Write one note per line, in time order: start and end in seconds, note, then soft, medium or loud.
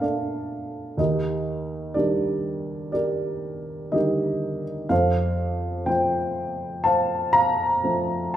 0.00 0.94 A#2 soft
0.00 0.96 A3 soft
0.00 0.96 A#3 soft
0.00 0.96 D4 soft
0.00 0.95 A4 soft
0.00 1.01 D5 soft
0.00 1.02 F5 medium
0.00 1.01 A5 medium
0.97 4.86 D#2 soft
0.97 1.95 G4 soft
0.97 1.95 A#4 soft
0.97 1.99 D#5 medium
1.94 2.90 D#3 soft
1.94 2.90 G3 soft
1.94 2.91 D4 soft
1.94 2.92 G4 soft
1.94 2.93 A#4 soft
1.94 2.91 D5 medium
2.92 3.92 G4 soft
2.92 3.92 A#4 soft
2.92 3.95 D5 medium
3.92 4.88 D3 soft
3.92 4.87 D#3 soft
3.92 4.88 G3 soft
3.92 4.87 G4 soft
3.92 4.87 A#4 soft
3.92 4.62 D#5 medium
4.89 8.37 F2 soft
4.89 6.81 A4 soft
4.89 5.87 C5 medium
4.89 5.90 F5 medium
5.86 6.81 F3 soft
5.86 6.82 A3 soft
5.86 6.82 C4 soft
5.86 6.84 C5 medium
5.86 6.87 G5 medium
6.84 8.37 C5 medium
6.84 7.33 F5 medium
6.84 7.35 A5 medium
7.33 8.37 F5 medium
7.33 8.37 A#5 medium
7.83 8.37 F3 soft
7.83 8.37 A3 soft
7.83 8.37 C4 soft